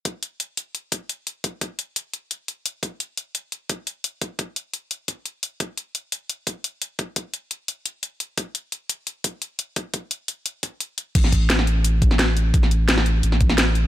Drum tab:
CC |----------------|----------------|----------------|----------------|
HH |x-x-x-x-x-x-x-x-|x-x-x-x-x-x-x-x-|x-x-x-x-x-x-x-x-|x-x-x-x-x-x-x-x-|
SD |----------------|----------------|----------------|----------------|
BD |o---------o-----|o-o-------------|o---------o-----|o-o-------o-----|

CC |----------------|----------------|----------------|----------------|
HH |x-x-x-x-x-x-x-x-|x-x-x-x-x-x-x-x-|x-x-x-x-x-x-x-x-|x-x-x-x-x-x-x-x-|
SD |----------------|----------------|----------------|----------------|
BD |o---------o-----|o-o-------------|o---------o-----|o-o-------o-----|

CC |x---------------|----------------|
HH |x-x-x-x-x-x-x-x-|x-x-x-x-x-x-x-x-|
SD |-o--oo-----oo---|-o--oo---o-oo---|
BD |o-o-------o-----|o---------o-----|